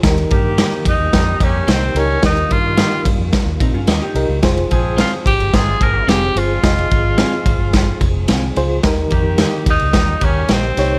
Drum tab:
RD |xxx-x-x-x-x-x-x-|xxx-x-x-x-x-x-x-|xxx-x-xxx-x-x-x-|xxx-x-x-x-x-x-x-|
SD |o---o---o---o---|o---o---o---o---|o---o---o---o---|o---o---o---o---|
BD |o-o---o-o-o-----|o-o---o-o-o-----|o-o---o-o-o-----|o-o---o-o-o-----|

RD |x-x-x-xxx-x-x-x-|
SD |o---o---o---o-o-|
BD |o-o---o-o-o-----|